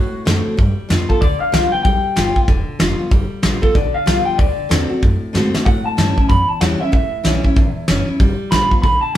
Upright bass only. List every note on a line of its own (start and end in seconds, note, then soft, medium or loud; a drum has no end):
0.00 0.14 A2 medium
0.15 muted upright bass stroke medium
0.27 0.46 F#2 loud
0.46 muted upright bass stroke medium
0.59 0.78 G2 medium
0.78 muted upright bass stroke medium
0.90 1.09 F2 loud
1.22 1.41 D2 medium
1.41 muted upright bass stroke medium
1.53 1.72 C2 loud
1.73 muted upright bass stroke medium
1.85 2.04 B1 medium
2.16 2.36 G1 medium
2.48 2.67 E1 loud
2.68 muted upright bass stroke medium
2.80 2.99 F1 loud
3.12 3.30 G1 medium
3.43 3.62 A1 medium
3.63 muted upright bass stroke medium
3.75 3.94 B1 medium
4.07 4.25 C2 loud
4.39 4.58 D2 medium
4.58 muted upright bass stroke medium
4.71 4.90 E2 medium
4.91 muted upright bass stroke medium
5.03 5.22 F#2 medium
5.22 muted upright bass stroke medium
5.35 5.54 G#2 loud
5.55 muted upright bass stroke medium
5.66 5.85 A2 medium
5.86 muted upright bass stroke medium
5.98 6.17 G2 loud
6.30 6.49 F#2 medium
6.49 muted upright bass stroke medium
6.61 6.80 E2 loud
6.80 muted upright bass stroke medium
6.93 7.11 A1 medium
7.13 muted upright bass stroke soft
7.25 7.44 B1 medium
7.57 7.76 A1 medium
7.76 muted upright bass stroke medium
7.88 8.07 F#1 medium
8.08 muted upright bass stroke medium
8.20 8.39 G1 medium
8.52 8.71 A1 loud
8.84 9.03 B1 medium